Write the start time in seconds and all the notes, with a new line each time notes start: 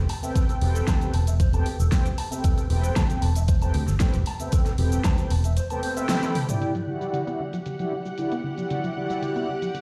0.09 A5, open hi-hat
0.22 C4 A4 B4 E5 G5, closed hi-hat, cabasa
0.36 A4, kick, closed hi-hat, cabasa
0.49 A4, closed hi-hat, cabasa
0.61 E1 C4 G4 A4 B4 G5, open hi-hat
0.75 A4, closed hi-hat, cabasa
0.87 D2 A5, kick, snare, closed hi-hat, cabasa
1.00 C4 G4 A4 B4 G5, closed hi-hat, cabasa
1.14 E1 A5, open hi-hat
1.27 E5, closed hi-hat, cabasa
1.40 C5, kick, closed hi-hat, cabasa
1.52 C4 A4 B4 G5 A5, closed hi-hat, cabasa
1.66 G4, open hi-hat
1.79 E1 A4, cabasa
1.91 A3 C4 A4 B4 G5, kick, snare, open hi-hat, cabasa
2.05 G4, closed hi-hat, cabasa
2.18 A5, open hi-hat
2.31 C4 A4 B4 E5 G5, closed hi-hat, cabasa
2.44 E1 A4, kick, closed hi-hat, cabasa
2.58 A4, closed hi-hat, cabasa
2.69 E1 C4 G4 A4 B4 G5, open hi-hat
2.84 A4, closed hi-hat, cabasa
2.96 D2 A5, kick, snare, closed hi-hat, cabasa
3.09 C4 G4 A4 B4 G5, closed hi-hat, cabasa
3.22 E1 A5, open hi-hat
3.35 E5, closed hi-hat, cabasa
3.48 C5, kick, closed hi-hat, cabasa
3.61 C4 A4 B4 G5 A5, closed hi-hat, cabasa
3.74 D2 G4, open hi-hat
3.87 G1 A4, snare, cabasa
4.00 A3 C4 A4 B4 G5, kick, snare, closed hi-hat, cabasa
4.14 E1 G4, closed hi-hat, cabasa
4.26 A5, open hi-hat
4.39 C4 A4 B4 E5 G5, closed hi-hat, cabasa
4.52 A4, kick, closed hi-hat, cabasa
4.66 A4, snare, closed hi-hat, cabasa
4.78 E1 C4 G4 A4 B4 G5, open hi-hat
4.92 A4, closed hi-hat, cabasa
5.04 D2 A5, kick, snare, closed hi-hat, cabasa
5.18 C4 G4 A4 B4 G5, closed hi-hat, cabasa
5.30 E1 A5, open hi-hat
5.44 E5, closed hi-hat, cabasa
5.57 C5, closed hi-hat, cabasa
5.70 C4 A4 B4 G5 A5, closed hi-hat, cabasa
5.83 C4 A4 B4 C5 A5, open hi-hat
5.96 C4 A4 B4 E5 G5, closed hi-hat, cabasa
6.08 C4 A4 E5 G5 B5, snare, open hi-hat, cabasa
6.23 E4, closed hi-hat, high tom, cabasa
6.35 G4, open hi-hat, mid tom
6.48 A3 E4 G4 D5 G5, closed hi-hat, mid tom, cabasa
6.62 D3 G4 F#5, closed hi-hat, cabasa
6.75 F#3, closed hi-hat, cabasa
6.87 D3 E4 G4 D5 F#5
7.01 G3, closed hi-hat, cabasa
7.13 D3, closed hi-hat, cabasa
7.26 B3 E4 G4 D5 F#5, closed hi-hat, cabasa
7.40 D3
7.53 F#3, closed hi-hat, cabasa
7.66 D3, closed hi-hat, cabasa
7.79 F#3 E4 G4 D5 F#5, closed hi-hat, cabasa
7.92 D3
8.06 G3, cabasa
8.18 D3 E4 G4 D5 F#5, closed hi-hat, cabasa
8.32 B3, closed hi-hat, cabasa
8.44 D3
8.57 F#3 E4 G4 D5 F#5, closed hi-hat, cabasa
8.70 D3, closed hi-hat, cabasa
8.84 F#3, closed hi-hat, cabasa
8.96 D3 E4 G4 D5 F#5
9.10 G3, closed hi-hat, cabasa
9.22 D3, closed hi-hat, cabasa
9.36 B3 E4 G4 D5 F#5, closed hi-hat, cabasa
9.49 D3
9.62 F#3, closed hi-hat, cabasa
9.74 D3, closed hi-hat, cabasa